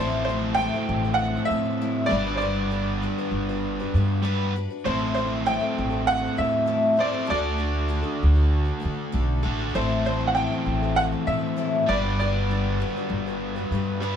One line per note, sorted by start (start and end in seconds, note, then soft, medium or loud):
0.00 0.68 A1 medium
0.00 0.29 A2 medium
0.00 2.08 A2 medium
0.00 0.29 E3 medium
0.00 0.27 A3 medium
0.00 0.28 C4 medium
0.00 0.28 E4 medium
0.00 0.29 A4 medium
0.00 0.23 C5 medium
0.25 0.58 C5 medium
0.29 0.59 A3 medium
0.29 0.59 C4 medium
0.29 0.59 E4 medium
0.29 0.60 A4 medium
0.55 0.74 A2 medium
0.55 1.20 G5 medium
0.60 0.74 E3 medium
0.60 0.75 A3 medium
0.60 0.74 C4 medium
0.60 0.74 E4 medium
0.60 0.73 A4 medium
0.74 1.05 A3 soft
0.74 1.04 C4 soft
0.74 1.04 E4 soft
0.74 1.03 A4 medium
0.89 1.36 A1 medium
1.05 1.36 A3 soft
1.05 1.36 C4 soft
1.05 1.36 E4 soft
1.05 1.35 A4 soft
1.14 1.45 F#5 medium
1.37 1.49 A3 soft
1.37 1.50 C4 soft
1.37 1.50 E4 soft
1.37 1.51 A4 soft
1.45 2.11 E5 medium
1.50 1.98 A2 medium
1.50 1.80 A3 medium
1.50 1.81 C4 medium
1.50 1.81 E4 medium
1.50 1.82 A4 medium
1.81 2.12 A2 medium
1.81 2.12 E3 medium
1.81 2.11 A3 medium
1.81 2.12 C4 medium
1.81 2.12 E4 medium
1.81 2.12 A4 medium
2.06 2.33 D5 medium
2.11 3.05 G1 loud
2.11 2.27 G3 medium
2.11 4.23 B3 loud
2.11 2.27 D4 medium
2.11 2.27 F#4 medium
2.11 2.25 B4 medium
2.26 2.40 D4 soft
2.26 2.40 F#4 soft
2.26 2.41 B4 soft
2.35 2.42 C5 medium
2.35 4.49 D5 medium
2.40 2.70 G3 medium
2.40 2.71 D4 medium
2.40 2.71 F#4 medium
2.40 2.72 B4 medium
2.71 3.01 G3 medium
2.71 3.02 D4 medium
2.71 3.02 F#4 medium
2.71 3.03 B4 medium
3.02 3.18 G3 medium
3.02 3.18 D4 medium
3.02 3.19 F#4 medium
3.02 3.17 B4 medium
3.19 3.50 D4 medium
3.19 3.48 F#4 medium
3.19 3.48 B4 medium
3.31 3.79 G1 medium
3.49 3.81 D4 soft
3.49 3.80 F#4 medium
3.49 3.79 B4 medium
3.80 3.94 D4 medium
3.80 3.95 F#4 medium
3.80 3.95 B4 medium
3.94 4.65 G2 medium
3.94 4.21 G3 medium
3.94 4.23 D4 medium
3.94 4.24 F#4 medium
3.94 4.23 B4 medium
4.23 4.55 G3 medium
4.23 4.54 B3 medium
4.23 4.55 D4 medium
4.23 4.56 F#4 medium
4.23 4.55 B4 medium
4.56 4.71 G3 medium
4.56 4.71 D4 medium
4.56 4.70 F#4 medium
4.56 4.69 B4 medium
4.70 4.85 D4 soft
4.70 4.85 F#4 soft
4.70 4.86 B4 soft
4.85 5.57 A1 medium
4.85 5.17 A2 medium
4.85 5.17 E3 medium
4.85 5.16 A3 medium
4.85 5.16 C4 medium
4.85 5.17 E4 medium
4.85 5.17 A4 medium
4.85 5.13 C5 medium
4.85 6.98 C5 medium
5.15 5.46 A3 medium
5.15 5.46 C4 medium
5.15 5.46 E4 medium
5.15 5.47 C5 medium
5.19 5.47 A4 medium
5.46 5.62 A2 medium
5.46 5.63 E3 medium
5.46 5.62 A3 medium
5.46 5.61 C4 medium
5.46 5.59 E4 medium
5.46 5.59 A4 medium
5.46 6.10 G5 medium
5.60 5.92 A3 soft
5.60 5.91 C4 soft
5.60 5.90 E4 medium
5.60 5.89 A4 medium
5.78 6.25 A1 medium
5.90 6.22 A3 soft
5.90 6.21 C4 soft
5.90 6.20 E4 soft
5.90 6.20 A4 medium
6.07 6.36 F#5 medium
6.21 6.35 A3 soft
6.21 6.36 C4 soft
6.21 6.36 E4 soft
6.21 6.37 A4 soft
6.37 7.10 A2 medium
6.37 6.66 A3 medium
6.37 6.66 C4 medium
6.37 6.66 E4 medium
6.37 6.66 A4 medium
6.37 7.02 E5 medium
6.66 6.98 A2 medium
6.66 6.99 E3 medium
6.66 6.94 A3 medium
6.66 6.95 C4 medium
6.66 6.96 E4 medium
6.66 6.97 A4 medium
6.95 7.12 A3 medium
6.95 7.11 C4 medium
6.95 7.12 E4 medium
6.95 7.10 A4 medium
6.95 7.28 C5 medium
7.00 7.30 A2 medium
7.00 7.29 A3 medium
7.00 7.29 C4 medium
7.00 7.29 D5 medium
7.11 7.26 A3 soft
7.11 7.27 C4 soft
7.11 7.26 E4 medium
7.11 7.26 A4 soft
7.26 7.59 D3 medium
7.26 7.56 A3 medium
7.26 7.57 D4 medium
7.26 7.59 F#4 medium
7.26 7.58 A4 medium
7.30 8.01 D2 medium
7.30 9.43 F#4 medium
7.30 9.42 A4 medium
7.30 9.40 D5 medium
7.57 7.88 A3 medium
7.57 7.89 D4 medium
7.57 7.89 F#4 medium
7.57 7.89 A4 medium
7.88 8.05 D3 medium
7.88 8.06 A3 medium
7.88 8.04 D4 medium
7.88 8.03 F#4 medium
7.88 8.01 A4 medium
8.03 8.36 D4 soft
8.03 8.35 F#4 medium
8.03 8.34 A4 medium
8.23 8.70 D2 medium
8.35 8.67 D4 medium
8.35 8.65 F#4 soft
8.35 8.64 A4 medium
8.65 8.80 D4 soft
8.65 8.81 F#4 soft
8.65 8.81 A4 medium
8.80 9.11 A3 medium
8.80 9.12 D4 medium
8.80 9.12 F#4 medium
8.80 9.12 A4 medium
8.85 9.08 D3 medium
9.12 9.41 B1 medium
9.12 9.44 D3 medium
9.12 9.41 A3 medium
9.12 9.42 D4 medium
9.12 9.43 F#4 medium
9.12 9.43 A4 medium
9.43 9.72 A1 medium
9.43 9.74 D3 medium
9.43 9.59 A3 medium
9.43 9.59 D4 medium
9.43 9.58 F#4 medium
9.43 9.57 A4 medium
9.58 9.75 D4 soft
9.58 9.75 F#4 soft
9.58 9.74 A4 medium
9.74 10.46 A1 medium
9.74 10.05 A2 medium
9.74 10.05 E3 medium
9.74 10.03 A3 medium
9.74 10.05 C4 medium
9.74 10.06 E4 medium
9.74 10.06 A4 medium
9.74 10.03 C5 medium
10.05 10.35 A3 medium
10.05 10.36 C4 medium
10.05 10.36 E4 medium
10.05 10.36 A4 medium
10.05 10.28 C5 medium
10.27 10.35 F#5 medium
10.35 10.51 A2 medium
10.35 10.52 E3 medium
10.35 10.51 A3 medium
10.35 10.52 C4 medium
10.35 10.52 E4 medium
10.35 10.50 A4 medium
10.35 10.92 G5 medium
10.51 10.83 A3 soft
10.51 10.82 C4 soft
10.51 10.83 E4 soft
10.51 10.81 A4 medium
10.66 11.13 A1 medium
10.82 11.14 A3 soft
10.82 11.12 C4 soft
10.82 11.11 E4 soft
10.82 11.11 A4 medium
10.96 11.03 F#5 medium
11.12 11.25 A3 soft
11.12 11.27 C4 soft
11.12 11.27 E4 soft
11.12 11.27 A4 soft
11.26 11.74 A2 medium
11.26 11.56 A3 medium
11.26 11.56 C4 medium
11.26 11.58 E4 medium
11.26 11.58 A4 medium
11.26 11.90 E5 medium
11.57 11.88 A2 medium
11.57 11.89 E3 medium
11.57 11.88 A3 medium
11.57 11.88 C4 medium
11.57 11.89 E4 medium
11.57 11.89 A4 medium
11.88 12.83 G1 medium
11.88 12.04 G3 medium
11.88 14.00 B3 medium
11.88 12.04 D4 medium
11.88 12.04 F#4 medium
11.88 12.03 B4 medium
11.88 12.18 D5 medium
12.04 12.20 D4 soft
12.04 12.19 F#4 soft
12.04 12.19 B4 soft
12.20 12.48 G3 medium
12.20 12.50 D4 medium
12.20 12.50 F#4 medium
12.20 12.50 B4 medium
12.20 14.16 D5 medium
12.49 12.79 G3 medium
12.49 12.80 D4 medium
12.49 12.80 F#4 medium
12.49 12.81 B4 medium
12.80 12.95 G3 medium
12.80 12.96 D4 medium
12.80 12.96 F#4 medium
12.80 12.95 B4 medium
12.97 13.27 D4 soft
12.97 13.27 F#4 medium
12.97 13.26 B4 medium
13.10 13.57 G1 medium
13.27 13.57 D4 medium
13.27 13.56 F#4 medium
13.27 13.55 B4 medium
13.56 13.72 D4 soft
13.56 13.72 F#4 soft
13.56 13.71 B4 medium
13.71 14.16 G2 medium
13.71 14.01 G3 medium
13.71 14.01 D4 medium
13.71 14.02 F#4 medium
13.71 14.02 B4 medium
14.02 14.16 G3 medium
14.02 14.16 B3 medium
14.02 14.16 D4 medium
14.02 14.16 F#4 medium
14.02 14.16 B4 medium